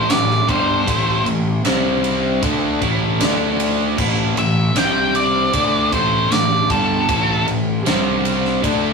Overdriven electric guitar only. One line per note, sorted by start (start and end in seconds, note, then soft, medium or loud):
0.09 0.40 A2 medium
0.09 0.40 E3 medium
0.48 0.86 G2 medium
0.48 0.86 D3 loud
0.48 0.86 G3 loud
0.86 1.24 A2 medium
0.86 1.25 E3 medium
0.86 1.25 A3 medium
1.26 1.57 A2 medium
1.26 1.58 E3 medium
1.64 2.41 C3 medium
1.64 2.41 G3 medium
1.64 2.42 C4 loud
2.42 2.80 D3 medium
2.42 2.81 A3 loud
2.42 2.81 D4 loud
2.81 3.19 A2 medium
2.81 3.19 E3 medium
2.81 3.19 A3 medium
3.20 3.96 D3 medium
3.20 3.97 A3 loud
3.20 3.97 D4 medium
3.97 4.35 A2 medium
3.97 4.35 E3 medium
3.97 4.36 A3 loud
4.37 4.68 A2 medium
4.37 4.68 E3 medium
4.75 5.52 C3 medium
4.75 5.52 G3 medium
4.75 5.53 C4 medium
5.53 5.91 D3 medium
5.53 5.91 A3 loud
5.53 5.91 D4 loud
5.92 6.30 A2 medium
5.92 6.30 E3 medium
5.92 6.30 A3 medium
6.31 6.62 A2 medium
6.31 6.62 E3 medium
6.70 7.07 G2 medium
6.70 7.07 D3 medium
6.70 7.08 G3 loud
7.08 7.46 A2 medium
7.08 7.46 E3 medium
7.08 7.46 A3 medium
7.47 7.78 A2 medium
7.47 7.79 E3 medium
7.86 8.62 C3 loud
7.86 8.62 G3 medium
7.86 8.63 C4 medium
8.62 8.93 D3 medium
8.62 8.93 A3 medium
8.62 8.93 D4 loud